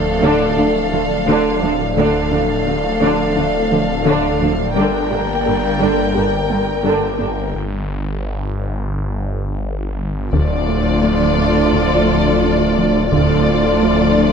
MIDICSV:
0, 0, Header, 1, 12, 480
1, 0, Start_track
1, 0, Key_signature, -1, "minor"
1, 0, Tempo, 697674
1, 1353, Time_signature, 4, 2, 24, 8
1, 9855, End_track
2, 0, Start_track
2, 0, Title_t, "Violin section"
2, 0, Program_c, 0, 48
2, 7113, Note_on_c, 0, 74, 48
2, 9006, Note_off_c, 0, 74, 0
2, 9032, Note_on_c, 0, 74, 54
2, 9855, Note_off_c, 0, 74, 0
2, 9855, End_track
3, 0, Start_track
3, 0, Title_t, "Violin section"
3, 0, Program_c, 1, 48
3, 0, Note_on_c, 1, 69, 65
3, 0, Note_on_c, 1, 77, 58
3, 1326, Note_off_c, 1, 77, 0
3, 1348, Note_off_c, 1, 69, 0
3, 1354, Note_on_c, 1, 77, 60
3, 1357, Note_on_c, 1, 69, 59
3, 3246, Note_off_c, 1, 77, 0
3, 3247, Note_off_c, 1, 69, 0
3, 3273, Note_on_c, 1, 79, 52
3, 3274, Note_on_c, 1, 70, 54
3, 5166, Note_off_c, 1, 70, 0
3, 5193, Note_off_c, 1, 79, 0
3, 7099, Note_on_c, 1, 69, 52
3, 8999, Note_off_c, 1, 69, 0
3, 9028, Note_on_c, 1, 69, 56
3, 9855, Note_off_c, 1, 69, 0
3, 9855, End_track
4, 0, Start_track
4, 0, Title_t, "Analog synth pad"
4, 0, Program_c, 2, 89
4, 0, Note_on_c, 2, 53, 66
4, 0, Note_on_c, 2, 57, 66
4, 0, Note_on_c, 2, 62, 64
4, 0, Note_on_c, 2, 74, 67
4, 1324, Note_off_c, 2, 74, 0
4, 1326, Note_off_c, 2, 62, 0
4, 1348, Note_off_c, 2, 57, 0
4, 1349, Note_off_c, 2, 53, 0
4, 1356, Note_on_c, 2, 57, 62
4, 1357, Note_on_c, 2, 62, 59
4, 1358, Note_on_c, 2, 53, 63
4, 1360, Note_on_c, 2, 74, 64
4, 3247, Note_off_c, 2, 57, 0
4, 3248, Note_off_c, 2, 53, 0
4, 3248, Note_off_c, 2, 62, 0
4, 3249, Note_off_c, 2, 74, 0
4, 3282, Note_on_c, 2, 58, 62
4, 3283, Note_on_c, 2, 55, 61
4, 3284, Note_on_c, 2, 74, 62
4, 3286, Note_on_c, 2, 62, 58
4, 5171, Note_off_c, 2, 74, 0
4, 5172, Note_off_c, 2, 62, 0
4, 5198, Note_off_c, 2, 55, 0
4, 5198, Note_off_c, 2, 58, 0
4, 7110, Note_on_c, 2, 74, 65
4, 7111, Note_on_c, 2, 53, 62
4, 7112, Note_on_c, 2, 62, 63
4, 7113, Note_on_c, 2, 57, 65
4, 9004, Note_off_c, 2, 74, 0
4, 9005, Note_off_c, 2, 53, 0
4, 9005, Note_off_c, 2, 57, 0
4, 9005, Note_off_c, 2, 62, 0
4, 9031, Note_on_c, 2, 53, 64
4, 9036, Note_on_c, 2, 62, 62
4, 9037, Note_on_c, 2, 57, 67
4, 9038, Note_on_c, 2, 74, 62
4, 9855, Note_off_c, 2, 53, 0
4, 9855, Note_off_c, 2, 57, 0
4, 9855, Note_off_c, 2, 62, 0
4, 9855, Note_off_c, 2, 74, 0
4, 9855, End_track
5, 0, Start_track
5, 0, Title_t, "French horn section"
5, 0, Program_c, 3, 60
5, 7117, Note_on_c, 3, 57, 48
5, 7119, Note_on_c, 3, 62, 46
5, 9008, Note_off_c, 3, 57, 0
5, 9009, Note_off_c, 3, 62, 0
5, 9029, Note_on_c, 3, 57, 50
5, 9029, Note_on_c, 3, 62, 53
5, 9855, Note_off_c, 3, 57, 0
5, 9855, Note_off_c, 3, 62, 0
5, 9855, End_track
6, 0, Start_track
6, 0, Title_t, "Viola section"
6, 0, Program_c, 4, 48
6, 154, Note_on_c, 4, 50, 61
6, 155, Note_on_c, 4, 62, 68
6, 377, Note_off_c, 4, 50, 0
6, 377, Note_off_c, 4, 62, 0
6, 397, Note_on_c, 4, 50, 39
6, 399, Note_on_c, 4, 62, 43
6, 452, Note_off_c, 4, 50, 0
6, 454, Note_off_c, 4, 62, 0
6, 640, Note_on_c, 4, 50, 46
6, 641, Note_on_c, 4, 57, 51
6, 695, Note_off_c, 4, 50, 0
6, 696, Note_off_c, 4, 57, 0
6, 885, Note_on_c, 4, 50, 62
6, 887, Note_on_c, 4, 62, 62
6, 1103, Note_off_c, 4, 50, 0
6, 1104, Note_off_c, 4, 62, 0
6, 1126, Note_on_c, 4, 62, 51
6, 1129, Note_on_c, 4, 50, 51
6, 1181, Note_off_c, 4, 62, 0
6, 1184, Note_off_c, 4, 50, 0
6, 1357, Note_on_c, 4, 50, 56
6, 1360, Note_on_c, 4, 62, 56
6, 1579, Note_off_c, 4, 50, 0
6, 1580, Note_off_c, 4, 62, 0
6, 1597, Note_on_c, 4, 50, 38
6, 1597, Note_on_c, 4, 62, 42
6, 1652, Note_off_c, 4, 50, 0
6, 1652, Note_off_c, 4, 62, 0
6, 1839, Note_on_c, 4, 57, 40
6, 1842, Note_on_c, 4, 50, 41
6, 1894, Note_off_c, 4, 57, 0
6, 1897, Note_off_c, 4, 50, 0
6, 2084, Note_on_c, 4, 50, 56
6, 2085, Note_on_c, 4, 62, 60
6, 2302, Note_off_c, 4, 50, 0
6, 2303, Note_off_c, 4, 62, 0
6, 2322, Note_on_c, 4, 50, 41
6, 2323, Note_on_c, 4, 62, 39
6, 2377, Note_off_c, 4, 50, 0
6, 2378, Note_off_c, 4, 62, 0
6, 2559, Note_on_c, 4, 50, 46
6, 2559, Note_on_c, 4, 57, 41
6, 2614, Note_off_c, 4, 50, 0
6, 2614, Note_off_c, 4, 57, 0
6, 2799, Note_on_c, 4, 62, 64
6, 2800, Note_on_c, 4, 50, 59
6, 3019, Note_off_c, 4, 62, 0
6, 3020, Note_off_c, 4, 50, 0
6, 3042, Note_on_c, 4, 62, 39
6, 3046, Note_on_c, 4, 50, 41
6, 3097, Note_off_c, 4, 62, 0
6, 3101, Note_off_c, 4, 50, 0
6, 3278, Note_on_c, 4, 62, 52
6, 3280, Note_on_c, 4, 50, 48
6, 3499, Note_off_c, 4, 62, 0
6, 3500, Note_off_c, 4, 50, 0
6, 3514, Note_on_c, 4, 62, 35
6, 3516, Note_on_c, 4, 50, 33
6, 3569, Note_off_c, 4, 62, 0
6, 3571, Note_off_c, 4, 50, 0
6, 3757, Note_on_c, 4, 50, 32
6, 3757, Note_on_c, 4, 58, 32
6, 3812, Note_off_c, 4, 50, 0
6, 3812, Note_off_c, 4, 58, 0
6, 3995, Note_on_c, 4, 50, 51
6, 4001, Note_on_c, 4, 62, 40
6, 4218, Note_off_c, 4, 50, 0
6, 4220, Note_off_c, 4, 62, 0
6, 4241, Note_on_c, 4, 50, 31
6, 4241, Note_on_c, 4, 62, 37
6, 4296, Note_off_c, 4, 50, 0
6, 4296, Note_off_c, 4, 62, 0
6, 4478, Note_on_c, 4, 50, 39
6, 4481, Note_on_c, 4, 58, 32
6, 4533, Note_off_c, 4, 50, 0
6, 4536, Note_off_c, 4, 58, 0
6, 4710, Note_on_c, 4, 50, 43
6, 4712, Note_on_c, 4, 62, 42
6, 4934, Note_off_c, 4, 50, 0
6, 4935, Note_off_c, 4, 62, 0
6, 4953, Note_on_c, 4, 50, 35
6, 4954, Note_on_c, 4, 62, 33
6, 5008, Note_off_c, 4, 50, 0
6, 5009, Note_off_c, 4, 62, 0
6, 7112, Note_on_c, 4, 65, 49
6, 9005, Note_off_c, 4, 65, 0
6, 9032, Note_on_c, 4, 65, 53
6, 9855, Note_off_c, 4, 65, 0
6, 9855, End_track
7, 0, Start_track
7, 0, Title_t, "Synth arpeggio sound"
7, 0, Program_c, 5, 84
7, 156, Note_on_c, 5, 50, 75
7, 299, Note_off_c, 5, 50, 0
7, 401, Note_on_c, 5, 62, 55
7, 543, Note_off_c, 5, 62, 0
7, 637, Note_on_c, 5, 53, 56
7, 780, Note_off_c, 5, 53, 0
7, 881, Note_on_c, 5, 50, 74
7, 1022, Note_off_c, 5, 50, 0
7, 1120, Note_on_c, 5, 53, 56
7, 1262, Note_off_c, 5, 53, 0
7, 1355, Note_on_c, 5, 50, 74
7, 1498, Note_off_c, 5, 50, 0
7, 1592, Note_on_c, 5, 62, 48
7, 1736, Note_off_c, 5, 62, 0
7, 1836, Note_on_c, 5, 62, 57
7, 1979, Note_off_c, 5, 62, 0
7, 2078, Note_on_c, 5, 50, 74
7, 2220, Note_off_c, 5, 50, 0
7, 2315, Note_on_c, 5, 62, 52
7, 2459, Note_off_c, 5, 62, 0
7, 2554, Note_on_c, 5, 53, 52
7, 2698, Note_off_c, 5, 53, 0
7, 2792, Note_on_c, 5, 50, 76
7, 2936, Note_off_c, 5, 50, 0
7, 3035, Note_on_c, 5, 53, 50
7, 3178, Note_off_c, 5, 53, 0
7, 3274, Note_on_c, 5, 55, 74
7, 3418, Note_off_c, 5, 55, 0
7, 3511, Note_on_c, 5, 67, 50
7, 3655, Note_off_c, 5, 67, 0
7, 3755, Note_on_c, 5, 67, 51
7, 3898, Note_off_c, 5, 67, 0
7, 3989, Note_on_c, 5, 55, 65
7, 4134, Note_off_c, 5, 55, 0
7, 4228, Note_on_c, 5, 67, 48
7, 4373, Note_off_c, 5, 67, 0
7, 4470, Note_on_c, 5, 58, 49
7, 4615, Note_off_c, 5, 58, 0
7, 4707, Note_on_c, 5, 55, 65
7, 4853, Note_off_c, 5, 55, 0
7, 4944, Note_on_c, 5, 58, 50
7, 5091, Note_off_c, 5, 58, 0
7, 7108, Note_on_c, 5, 50, 77
7, 7254, Note_off_c, 5, 50, 0
7, 7350, Note_on_c, 5, 57, 51
7, 7495, Note_off_c, 5, 57, 0
7, 7593, Note_on_c, 5, 57, 59
7, 7737, Note_off_c, 5, 57, 0
7, 7833, Note_on_c, 5, 57, 52
7, 7977, Note_off_c, 5, 57, 0
7, 8073, Note_on_c, 5, 50, 72
7, 8217, Note_off_c, 5, 50, 0
7, 8556, Note_on_c, 5, 62, 58
7, 8699, Note_off_c, 5, 62, 0
7, 8791, Note_on_c, 5, 53, 59
7, 8936, Note_off_c, 5, 53, 0
7, 9035, Note_on_c, 5, 50, 79
7, 9178, Note_off_c, 5, 50, 0
7, 9275, Note_on_c, 5, 57, 54
7, 9418, Note_off_c, 5, 57, 0
7, 9513, Note_on_c, 5, 57, 57
7, 9657, Note_off_c, 5, 57, 0
7, 9756, Note_on_c, 5, 57, 52
7, 9855, Note_off_c, 5, 57, 0
7, 9855, End_track
8, 0, Start_track
8, 0, Title_t, "Trombone section"
8, 0, Program_c, 6, 61
8, 7122, Note_on_c, 6, 45, 50
8, 7124, Note_on_c, 6, 53, 50
8, 9010, Note_off_c, 6, 45, 0
8, 9011, Note_off_c, 6, 53, 0
8, 9035, Note_on_c, 6, 45, 49
8, 9036, Note_on_c, 6, 53, 49
8, 9855, Note_off_c, 6, 45, 0
8, 9855, Note_off_c, 6, 53, 0
8, 9855, End_track
9, 0, Start_track
9, 0, Title_t, "Cello section"
9, 0, Program_c, 7, 48
9, 155, Note_on_c, 7, 38, 67
9, 210, Note_off_c, 7, 38, 0
9, 396, Note_on_c, 7, 38, 52
9, 451, Note_off_c, 7, 38, 0
9, 636, Note_on_c, 7, 38, 47
9, 691, Note_off_c, 7, 38, 0
9, 875, Note_on_c, 7, 38, 65
9, 930, Note_off_c, 7, 38, 0
9, 1121, Note_on_c, 7, 38, 45
9, 1176, Note_off_c, 7, 38, 0
9, 1359, Note_on_c, 7, 38, 68
9, 1414, Note_off_c, 7, 38, 0
9, 1601, Note_on_c, 7, 38, 42
9, 1656, Note_off_c, 7, 38, 0
9, 1841, Note_on_c, 7, 38, 42
9, 1896, Note_off_c, 7, 38, 0
9, 2078, Note_on_c, 7, 38, 63
9, 2133, Note_off_c, 7, 38, 0
9, 2320, Note_on_c, 7, 38, 43
9, 2375, Note_off_c, 7, 38, 0
9, 2558, Note_on_c, 7, 38, 40
9, 2613, Note_off_c, 7, 38, 0
9, 2794, Note_on_c, 7, 38, 54
9, 2849, Note_off_c, 7, 38, 0
9, 3038, Note_on_c, 7, 38, 45
9, 3093, Note_off_c, 7, 38, 0
9, 3278, Note_on_c, 7, 43, 54
9, 3333, Note_off_c, 7, 43, 0
9, 3518, Note_on_c, 7, 43, 40
9, 3573, Note_off_c, 7, 43, 0
9, 3761, Note_on_c, 7, 43, 35
9, 3816, Note_off_c, 7, 43, 0
9, 3996, Note_on_c, 7, 43, 51
9, 4051, Note_off_c, 7, 43, 0
9, 4237, Note_on_c, 7, 43, 37
9, 4292, Note_off_c, 7, 43, 0
9, 4478, Note_on_c, 7, 43, 32
9, 4533, Note_off_c, 7, 43, 0
9, 4712, Note_on_c, 7, 43, 43
9, 4767, Note_off_c, 7, 43, 0
9, 4949, Note_on_c, 7, 43, 30
9, 5005, Note_off_c, 7, 43, 0
9, 7105, Note_on_c, 7, 38, 52
9, 9002, Note_off_c, 7, 38, 0
9, 9032, Note_on_c, 7, 38, 53
9, 9855, Note_off_c, 7, 38, 0
9, 9855, End_track
10, 0, Start_track
10, 0, Title_t, "Double bass section"
10, 0, Program_c, 8, 48
10, 7111, Note_on_c, 8, 38, 53
10, 9004, Note_off_c, 8, 38, 0
10, 9031, Note_on_c, 8, 38, 55
10, 9855, Note_off_c, 8, 38, 0
10, 9855, End_track
11, 0, Start_track
11, 0, Title_t, "Detuned saw bass"
11, 0, Program_c, 10, 39
11, 0, Note_on_c, 10, 26, 56
11, 1354, Note_off_c, 10, 26, 0
11, 1358, Note_on_c, 10, 26, 58
11, 3275, Note_on_c, 10, 31, 55
11, 3286, Note_off_c, 10, 26, 0
11, 5187, Note_off_c, 10, 31, 0
11, 5191, Note_on_c, 10, 31, 52
11, 7084, Note_off_c, 10, 31, 0
11, 7109, Note_on_c, 10, 26, 58
11, 9004, Note_off_c, 10, 26, 0
11, 9033, Note_on_c, 10, 26, 60
11, 9855, Note_off_c, 10, 26, 0
11, 9855, End_track
12, 0, Start_track
12, 0, Title_t, "Taiko and cinematic ensemble drums"
12, 7105, Note_on_c, 9, 41, 81
12, 7174, Note_off_c, 9, 41, 0
12, 8070, Note_on_c, 9, 41, 68
12, 8138, Note_off_c, 9, 41, 0
12, 9027, Note_on_c, 9, 41, 83
12, 9096, Note_off_c, 9, 41, 0
12, 9855, End_track
0, 0, End_of_file